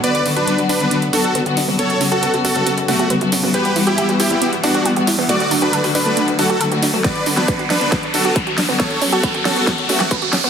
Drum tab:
HH |xxoxxxoxxxoxxxo-|xxoxxxoxxxoxxxo-|xxoxxxoxxxoxxxo-|xxo-xooxxxoxxxo-|
SD |----------------|----------------|----------------|----------------|
BD |----------------|----------------|----------------|----------------|

HH |xxoxxxoxxxoxxxo-|xxoxxxoxxxoxxxo-|
SD |o--o--o-o-----o-|o-----o-o--o--o-|
BD |o---o---o---o---|o---o---o---o---|